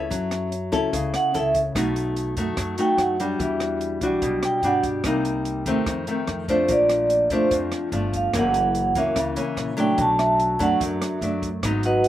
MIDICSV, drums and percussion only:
0, 0, Header, 1, 2, 480
1, 0, Start_track
1, 0, Tempo, 411523
1, 127, Time_signature, 4, 2, 24, 8
1, 14091, End_track
2, 0, Start_track
2, 0, Title_t, "Drums"
2, 128, Note_on_c, 9, 36, 54
2, 132, Note_on_c, 9, 42, 58
2, 244, Note_off_c, 9, 36, 0
2, 249, Note_off_c, 9, 42, 0
2, 364, Note_on_c, 9, 37, 51
2, 364, Note_on_c, 9, 42, 41
2, 481, Note_off_c, 9, 37, 0
2, 481, Note_off_c, 9, 42, 0
2, 607, Note_on_c, 9, 42, 46
2, 724, Note_off_c, 9, 42, 0
2, 847, Note_on_c, 9, 36, 55
2, 851, Note_on_c, 9, 42, 43
2, 963, Note_off_c, 9, 36, 0
2, 967, Note_off_c, 9, 42, 0
2, 1086, Note_on_c, 9, 36, 60
2, 1088, Note_on_c, 9, 42, 63
2, 1203, Note_off_c, 9, 36, 0
2, 1205, Note_off_c, 9, 42, 0
2, 1326, Note_on_c, 9, 37, 56
2, 1326, Note_on_c, 9, 42, 43
2, 1443, Note_off_c, 9, 37, 0
2, 1443, Note_off_c, 9, 42, 0
2, 1569, Note_on_c, 9, 42, 40
2, 1686, Note_off_c, 9, 42, 0
2, 1803, Note_on_c, 9, 42, 47
2, 1804, Note_on_c, 9, 36, 54
2, 1920, Note_off_c, 9, 36, 0
2, 1920, Note_off_c, 9, 42, 0
2, 2044, Note_on_c, 9, 36, 66
2, 2049, Note_on_c, 9, 37, 63
2, 2049, Note_on_c, 9, 42, 57
2, 2161, Note_off_c, 9, 36, 0
2, 2166, Note_off_c, 9, 37, 0
2, 2166, Note_off_c, 9, 42, 0
2, 2287, Note_on_c, 9, 42, 41
2, 2404, Note_off_c, 9, 42, 0
2, 2525, Note_on_c, 9, 42, 43
2, 2642, Note_off_c, 9, 42, 0
2, 2761, Note_on_c, 9, 36, 54
2, 2761, Note_on_c, 9, 42, 42
2, 2877, Note_off_c, 9, 42, 0
2, 2878, Note_off_c, 9, 36, 0
2, 2998, Note_on_c, 9, 37, 66
2, 2998, Note_on_c, 9, 42, 60
2, 3000, Note_on_c, 9, 36, 58
2, 3115, Note_off_c, 9, 37, 0
2, 3115, Note_off_c, 9, 42, 0
2, 3116, Note_off_c, 9, 36, 0
2, 3239, Note_on_c, 9, 42, 43
2, 3356, Note_off_c, 9, 42, 0
2, 3480, Note_on_c, 9, 37, 56
2, 3480, Note_on_c, 9, 42, 39
2, 3597, Note_off_c, 9, 37, 0
2, 3597, Note_off_c, 9, 42, 0
2, 3728, Note_on_c, 9, 42, 45
2, 3845, Note_off_c, 9, 42, 0
2, 3961, Note_on_c, 9, 36, 57
2, 3965, Note_on_c, 9, 42, 53
2, 4077, Note_off_c, 9, 36, 0
2, 4082, Note_off_c, 9, 42, 0
2, 4202, Note_on_c, 9, 37, 60
2, 4202, Note_on_c, 9, 42, 44
2, 4319, Note_off_c, 9, 37, 0
2, 4319, Note_off_c, 9, 42, 0
2, 4442, Note_on_c, 9, 42, 42
2, 4559, Note_off_c, 9, 42, 0
2, 4680, Note_on_c, 9, 36, 56
2, 4681, Note_on_c, 9, 42, 45
2, 4797, Note_off_c, 9, 36, 0
2, 4798, Note_off_c, 9, 42, 0
2, 4921, Note_on_c, 9, 36, 55
2, 4921, Note_on_c, 9, 42, 65
2, 5038, Note_off_c, 9, 36, 0
2, 5038, Note_off_c, 9, 42, 0
2, 5163, Note_on_c, 9, 37, 62
2, 5163, Note_on_c, 9, 42, 44
2, 5280, Note_off_c, 9, 37, 0
2, 5280, Note_off_c, 9, 42, 0
2, 5398, Note_on_c, 9, 42, 44
2, 5515, Note_off_c, 9, 42, 0
2, 5639, Note_on_c, 9, 36, 56
2, 5639, Note_on_c, 9, 42, 44
2, 5755, Note_off_c, 9, 36, 0
2, 5756, Note_off_c, 9, 42, 0
2, 5876, Note_on_c, 9, 37, 64
2, 5876, Note_on_c, 9, 42, 65
2, 5879, Note_on_c, 9, 36, 62
2, 5992, Note_off_c, 9, 37, 0
2, 5992, Note_off_c, 9, 42, 0
2, 5996, Note_off_c, 9, 36, 0
2, 6122, Note_on_c, 9, 42, 42
2, 6239, Note_off_c, 9, 42, 0
2, 6360, Note_on_c, 9, 42, 45
2, 6476, Note_off_c, 9, 42, 0
2, 6599, Note_on_c, 9, 36, 54
2, 6601, Note_on_c, 9, 42, 43
2, 6716, Note_off_c, 9, 36, 0
2, 6718, Note_off_c, 9, 42, 0
2, 6839, Note_on_c, 9, 36, 62
2, 6840, Note_on_c, 9, 37, 60
2, 6840, Note_on_c, 9, 42, 58
2, 6956, Note_off_c, 9, 36, 0
2, 6957, Note_off_c, 9, 37, 0
2, 6957, Note_off_c, 9, 42, 0
2, 7081, Note_on_c, 9, 42, 41
2, 7198, Note_off_c, 9, 42, 0
2, 7319, Note_on_c, 9, 37, 57
2, 7319, Note_on_c, 9, 42, 40
2, 7435, Note_off_c, 9, 37, 0
2, 7435, Note_off_c, 9, 42, 0
2, 7561, Note_on_c, 9, 36, 56
2, 7564, Note_on_c, 9, 42, 40
2, 7678, Note_off_c, 9, 36, 0
2, 7681, Note_off_c, 9, 42, 0
2, 7795, Note_on_c, 9, 42, 59
2, 7799, Note_on_c, 9, 36, 60
2, 7912, Note_off_c, 9, 42, 0
2, 7916, Note_off_c, 9, 36, 0
2, 8041, Note_on_c, 9, 37, 53
2, 8041, Note_on_c, 9, 42, 43
2, 8158, Note_off_c, 9, 37, 0
2, 8158, Note_off_c, 9, 42, 0
2, 8280, Note_on_c, 9, 42, 47
2, 8396, Note_off_c, 9, 42, 0
2, 8517, Note_on_c, 9, 42, 44
2, 8519, Note_on_c, 9, 36, 57
2, 8634, Note_off_c, 9, 42, 0
2, 8636, Note_off_c, 9, 36, 0
2, 8761, Note_on_c, 9, 36, 60
2, 8761, Note_on_c, 9, 42, 61
2, 8877, Note_off_c, 9, 36, 0
2, 8877, Note_off_c, 9, 42, 0
2, 9000, Note_on_c, 9, 37, 55
2, 9000, Note_on_c, 9, 42, 45
2, 9117, Note_off_c, 9, 37, 0
2, 9117, Note_off_c, 9, 42, 0
2, 9241, Note_on_c, 9, 42, 43
2, 9358, Note_off_c, 9, 42, 0
2, 9483, Note_on_c, 9, 36, 51
2, 9488, Note_on_c, 9, 42, 47
2, 9600, Note_off_c, 9, 36, 0
2, 9605, Note_off_c, 9, 42, 0
2, 9722, Note_on_c, 9, 36, 58
2, 9722, Note_on_c, 9, 37, 67
2, 9722, Note_on_c, 9, 42, 59
2, 9839, Note_off_c, 9, 36, 0
2, 9839, Note_off_c, 9, 37, 0
2, 9839, Note_off_c, 9, 42, 0
2, 9962, Note_on_c, 9, 42, 42
2, 10079, Note_off_c, 9, 42, 0
2, 10203, Note_on_c, 9, 42, 43
2, 10320, Note_off_c, 9, 42, 0
2, 10443, Note_on_c, 9, 42, 43
2, 10444, Note_on_c, 9, 36, 59
2, 10560, Note_off_c, 9, 36, 0
2, 10560, Note_off_c, 9, 42, 0
2, 10682, Note_on_c, 9, 36, 62
2, 10682, Note_on_c, 9, 37, 56
2, 10682, Note_on_c, 9, 42, 61
2, 10799, Note_off_c, 9, 36, 0
2, 10799, Note_off_c, 9, 37, 0
2, 10799, Note_off_c, 9, 42, 0
2, 10923, Note_on_c, 9, 42, 43
2, 11040, Note_off_c, 9, 42, 0
2, 11165, Note_on_c, 9, 37, 58
2, 11165, Note_on_c, 9, 42, 41
2, 11282, Note_off_c, 9, 37, 0
2, 11282, Note_off_c, 9, 42, 0
2, 11403, Note_on_c, 9, 42, 46
2, 11519, Note_off_c, 9, 42, 0
2, 11638, Note_on_c, 9, 42, 54
2, 11642, Note_on_c, 9, 36, 63
2, 11755, Note_off_c, 9, 42, 0
2, 11759, Note_off_c, 9, 36, 0
2, 11886, Note_on_c, 9, 37, 56
2, 11886, Note_on_c, 9, 42, 40
2, 12003, Note_off_c, 9, 37, 0
2, 12003, Note_off_c, 9, 42, 0
2, 12126, Note_on_c, 9, 42, 40
2, 12242, Note_off_c, 9, 42, 0
2, 12364, Note_on_c, 9, 36, 58
2, 12367, Note_on_c, 9, 42, 44
2, 12481, Note_off_c, 9, 36, 0
2, 12484, Note_off_c, 9, 42, 0
2, 12604, Note_on_c, 9, 36, 61
2, 12609, Note_on_c, 9, 42, 61
2, 12721, Note_off_c, 9, 36, 0
2, 12725, Note_off_c, 9, 42, 0
2, 12849, Note_on_c, 9, 37, 64
2, 12849, Note_on_c, 9, 42, 46
2, 12965, Note_off_c, 9, 37, 0
2, 12965, Note_off_c, 9, 42, 0
2, 13088, Note_on_c, 9, 42, 44
2, 13204, Note_off_c, 9, 42, 0
2, 13325, Note_on_c, 9, 36, 55
2, 13329, Note_on_c, 9, 42, 44
2, 13441, Note_off_c, 9, 36, 0
2, 13445, Note_off_c, 9, 42, 0
2, 13564, Note_on_c, 9, 36, 59
2, 13567, Note_on_c, 9, 37, 61
2, 13567, Note_on_c, 9, 42, 64
2, 13681, Note_off_c, 9, 36, 0
2, 13683, Note_off_c, 9, 37, 0
2, 13683, Note_off_c, 9, 42, 0
2, 13800, Note_on_c, 9, 42, 44
2, 13917, Note_off_c, 9, 42, 0
2, 14045, Note_on_c, 9, 42, 47
2, 14091, Note_off_c, 9, 42, 0
2, 14091, End_track
0, 0, End_of_file